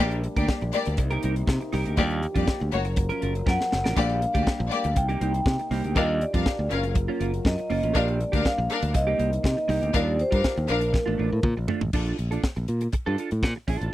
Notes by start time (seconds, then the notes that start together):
0.00 A#1 G3 A#3 D4 G4 A#4
0.11 closed hi-hat
0.23 muted clean electric guitar stroke, closed hi-hat
0.36 D2 A#3 D4 G4 A#4 D5, kick, closed hi-hat
0.48 muted clean electric guitar stroke, kick, snare
0.61 A#1, muted clean electric guitar stroke, closed hi-hat
0.73 A#3 G4 D5, closed hi-hat
0.85 D2, muted clean electric guitar stroke, closed hi-hat
0.97 C2 C3 D#4, muted clean electric guitar stroke, kick, closed hi-hat
1.11 D#4 G4 A#4, closed hi-hat
1.23 C2 D#4 G4 A#4, closed hi-hat
1.36 muted clean electric guitar stroke, closed hi-hat
1.47 C3, muted clean electric guitar stroke, kick, snare
1.61 muted clean electric guitar stroke, closed hi-hat
1.73 C2 D#4 G4 A#4, snare, open hi-hat
1.85 D2 D#4 G4 A#4, closed hi-hat
1.97 D#2 D#3 F3 G3 A#3 D4 F4 G4 D5, kick, closed hi-hat
2.10 closed hi-hat
2.22 muted clean electric guitar stroke, closed hi-hat
2.35 F2 G3 A#3 D4 F4 G4 D5, kick, closed hi-hat
2.48 kick, snare
2.60 D2, muted clean electric guitar stroke, closed hi-hat
2.72 F#1 F#3 A#3 F#4 A#4 C#5, closed hi-hat
2.85 muted clean electric guitar stroke, closed hi-hat
2.96 muted clean electric guitar stroke, kick, closed hi-hat
3.09 C#4 F4 A#4, closed hi-hat
3.21 F#1 C#4 F4 A#4, closed hi-hat
3.35 closed hi-hat
3.46 F#2 C#4 F4 A#4 F#5, kick, snare
3.59 muted clean electric guitar stroke, snare
3.71 F#1, muted clean electric guitar stroke, snare
3.84 A1 C#4 F4 A#4, snare
3.96 A#1 G3 A#3 D4 G4 D5 F5, kick, splash
4.09 closed hi-hat
4.22 muted clean electric guitar stroke, closed hi-hat
4.33 D2 A#3 D4 G4 D5, kick, closed hi-hat
4.46 muted clean electric guitar stroke, kick, snare
4.59 A#1, muted clean electric guitar stroke
4.70 A#3 G4 D5, closed hi-hat
4.84 D2, muted clean electric guitar stroke, closed hi-hat
4.95 C2 C3 A#3 D#4 G5, muted clean electric guitar stroke, kick, closed hi-hat
5.09 A#3 D#4 G4, closed hi-hat
5.20 C2 A#3 D#4 G4, closed hi-hat
5.34 muted clean electric guitar stroke, closed hi-hat
5.46 C3, muted clean electric guitar stroke, kick, snare
5.59 muted clean electric guitar stroke, closed hi-hat
5.71 C2 A#3 D#4 G4, snare, open hi-hat
5.84 D2 A#3 D#4 G4, closed hi-hat
5.95 D#2 D#3 G3 D4 F4 G4 A#4 D#5 F5, kick, closed hi-hat
6.21 D5, muted clean electric guitar stroke, closed hi-hat
6.34 F2 G3 D4 F4 A#4 F5, kick, closed hi-hat
6.45 muted clean electric guitar stroke, kick, snare
6.59 D2, muted clean electric guitar stroke
6.70 F#1 F#3 C#4 F4 A#4 F5, closed hi-hat
6.83 muted clean electric guitar stroke, closed hi-hat
6.95 muted clean electric guitar stroke, kick, closed hi-hat
7.08 A#3 C#4 F4
7.20 F#1 A#3 C#4 F4, closed hi-hat
7.33 muted clean electric guitar stroke, closed hi-hat
7.45 F#2 D#5, muted clean electric guitar stroke, kick, snare
7.58 muted clean electric guitar stroke, closed hi-hat
7.70 F#1 A#3 C#4 F4, open hi-hat
7.83 A1 A#3 C#4 F4, closed hi-hat
7.94 A#1 G3 A#3 D4 G4 A#4 D5 F5, kick, closed hi-hat
8.08 closed hi-hat
8.20 muted clean electric guitar stroke, closed hi-hat
8.32 D2 A#3 D4 G4 A#4 F5, kick, closed hi-hat
8.44 F5, muted clean electric guitar stroke, kick, snare
8.58 A#1, muted clean electric guitar stroke
8.70 D4 A#4 F5, closed hi-hat
8.82 D2, muted clean electric guitar stroke, closed hi-hat
8.94 C2 C3 D#4 D#5, muted clean electric guitar stroke, kick, closed hi-hat
9.07 A#3 D#4 G4
9.18 C2 A#3 D#4 G4, closed hi-hat
9.33 closed hi-hat
9.44 C3 D#5, muted clean electric guitar stroke, kick, snare
9.57 muted clean electric guitar stroke, closed hi-hat
9.68 C2 A#3 D#4 G4, snare, open hi-hat
9.81 D2 A#3 D#4 G4, closed hi-hat
9.93 D#2 D#3 G3 D4 F4 G4 A#4 D5 F5, kick, closed hi-hat
10.18 C5, muted clean electric guitar stroke, closed hi-hat
10.31 G2 G3 D4 F4 A#4 F5, kick, closed hi-hat
10.43 muted clean electric guitar stroke, kick, snare
10.56 D#2, muted clean electric guitar stroke, closed hi-hat
10.68 A#1 F3 A#3 D4 A#4 F5, closed hi-hat
10.81 muted clean electric guitar stroke, closed hi-hat
10.93 muted clean electric guitar stroke, kick, snare
11.06 A1 A3 D4 F4
11.18 A1 A3 D4 F4
11.32 A2
11.43 A#2, muted clean electric guitar stroke, kick, mid tom
11.57 A#1, muted clean electric guitar stroke
11.68 A3 D4 F4, floor tom
11.81 A1, muted clean electric guitar stroke, floor tom
11.93 A#1 D4 F4 A4, kick, crash
12.06 closed hi-hat
12.18 A#1, muted clean electric guitar stroke, closed hi-hat
12.31 D4 F4 A4, closed hi-hat
12.44 muted clean electric guitar stroke, kick, snare
12.56 A#1, muted clean electric guitar stroke, closed hi-hat
12.68 A#2, closed hi-hat
12.81 muted clean electric guitar stroke, closed hi-hat
12.93 muted clean electric guitar stroke, kick, closed hi-hat
13.06 G2 D4 F4 A4
13.18 D4 F4 A4, closed hi-hat
13.31 A2, muted clean electric guitar stroke, closed hi-hat
13.43 A#2, muted clean electric guitar stroke, kick, snare
13.56 muted clean electric guitar stroke
13.68 A#1 D4 F4 A4, kick, open hi-hat
13.81 A1 D4 F4 A4, closed hi-hat